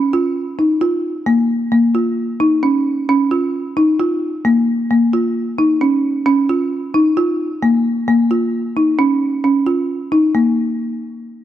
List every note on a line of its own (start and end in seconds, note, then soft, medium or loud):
0.13 0.45 F4 medium
0.59 0.74 D#4 medium
0.81 1.13 F4 medium
1.26 1.58 A#3 medium
1.72 1.88 A#3 medium
1.95 2.27 F4 medium
2.40 2.56 D#4 medium
2.63 2.95 C#4 medium
3.09 3.25 C#4 medium
3.31 3.63 F4 medium
3.77 3.93 D#4 medium
4.00 4.31 F4 medium
4.45 4.77 A#3 medium
4.91 5.06 A#3 medium
5.13 5.45 F4 medium
5.58 5.74 D#4 medium
5.81 6.13 C#4 medium
6.26 6.42 C#4 medium
6.49 6.81 F4 medium
6.94 7.10 D#4 medium
7.17 7.49 F4 medium
7.62 7.94 A#3 medium
8.08 8.24 A#3 medium
8.31 8.63 F4 medium
8.77 8.92 D#4 medium
8.99 9.31 C#4 medium
9.44 9.60 C#4 medium
9.67 9.98 F4 medium
10.12 10.28 D#4 medium
10.35 10.56 A#3 medium